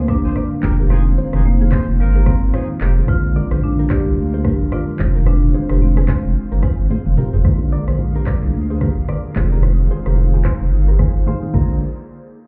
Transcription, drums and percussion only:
0.08 kick, cross-stick, high conga
0.24 shaker
0.36 cross-stick, high conga, low conga, shaker
0.63 kick, clap, low conga, shaker
0.79 shaker
0.89 cross-stick, low conga, shaker
1.17 high conga, shaker
1.33 cross-stick, high conga, shaker
1.44 low conga, shaker
1.59 high conga
1.72 kick, cross-stick, clap
1.87 shaker
1.99 shaker
2.26 kick, cross-stick, high conga, shaker
2.42 shaker
2.54 cross-stick, high conga, low conga, shaker
2.81 clap, low conga, shaker
2.97 shaker
3.07 kick, cross-stick, low conga, shaker
3.35 high conga, shaker
3.51 cross-stick, high conga, shaker
3.62 low conga, shaker
3.77 high conga
3.90 kick, cross-stick, clap, shaker
4.06 shaker
4.17 shaker
4.44 kick, cross-stick, high conga, shaker
4.60 shaker
4.72 cross-stick, high conga, low conga, shaker
4.99 kick, clap, low conga, shaker
5.15 shaker
5.25 cross-stick, low conga, shaker
5.43 mid tom
5.54 high conga, shaker
5.69 cross-stick, high conga, shaker
5.81 low conga, shaker
5.96 cross-stick, high conga
6.08 kick, cross-stick, clap, open hi-hat
6.24 shaker
6.35 shaker
6.62 kick, cross-stick, high conga, shaker
6.78 shaker
6.90 high tom, high conga, low conga, shaker
7.06 mid tom
7.17 mid tom, open hi-hat, low conga, shaker
7.33 floor tom, shaker
7.44 kick, cross-stick, low conga, shaker
7.72 high conga, shaker
7.88 cross-stick, high conga, shaker
7.99 low conga, shaker
8.14 high conga
8.27 kick, cross-stick, clap, shaker
8.42 shaker
8.54 shaker
8.81 kick, cross-stick, high conga
8.97 shaker
9.08 cross-stick, high conga, low conga, shaker
9.36 kick, clap, shaker
9.52 shaker
9.62 cross-stick, low conga, shaker
9.90 high conga, shaker
10.06 cross-stick, high conga, shaker
10.17 low conga, shaker
10.32 high conga
10.45 kick, cross-stick, clap
10.60 shaker
10.72 shaker
10.99 kick, cross-stick, high conga
11.15 shaker
11.26 high tom, high conga, low conga, shaker
11.42 mid tom
11.54 kick, crash, high conga

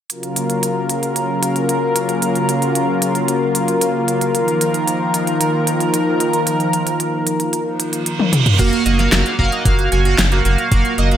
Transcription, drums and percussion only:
0.10 closed hi-hat
0.23 closed hi-hat
0.36 closed hi-hat
0.50 closed hi-hat
0.63 closed hi-hat
0.89 closed hi-hat
1.03 closed hi-hat
1.16 closed hi-hat
1.43 closed hi-hat
1.56 closed hi-hat
1.69 closed hi-hat
1.96 closed hi-hat
2.09 closed hi-hat
2.22 closed hi-hat
2.35 closed hi-hat
2.49 closed hi-hat
2.62 closed hi-hat
2.75 closed hi-hat
3.02 closed hi-hat
3.15 closed hi-hat
3.28 closed hi-hat
3.55 closed hi-hat
3.68 closed hi-hat
3.81 closed hi-hat
4.08 closed hi-hat
4.21 closed hi-hat
4.35 closed hi-hat
4.48 closed hi-hat
4.61 closed hi-hat
4.74 closed hi-hat
4.88 closed hi-hat
5.14 closed hi-hat
5.27 closed hi-hat
5.41 closed hi-hat
5.67 closed hi-hat
5.80 closed hi-hat
5.94 closed hi-hat
6.20 closed hi-hat
6.33 closed hi-hat
6.47 closed hi-hat
6.60 closed hi-hat
6.73 closed hi-hat
6.87 closed hi-hat
7.00 closed hi-hat
7.27 closed hi-hat
7.40 closed hi-hat
7.53 closed hi-hat
7.80 closed hi-hat
7.93 closed hi-hat
8.06 closed hi-hat
8.20 high tom
8.33 closed hi-hat, mid tom
8.46 closed hi-hat, mid tom
8.59 kick, closed hi-hat, crash
8.73 closed hi-hat
8.86 closed hi-hat
8.99 snare, closed hi-hat
9.12 snare, closed hi-hat
9.26 closed hi-hat
9.39 kick
9.52 closed hi-hat
9.65 kick, closed hi-hat
9.79 closed hi-hat
9.92 closed hi-hat
10.05 closed hi-hat
10.19 snare, closed hi-hat
10.32 closed hi-hat
10.45 closed hi-hat
10.58 closed hi-hat
10.72 kick, closed hi-hat
10.85 closed hi-hat
10.98 closed hi-hat
11.11 closed hi-hat

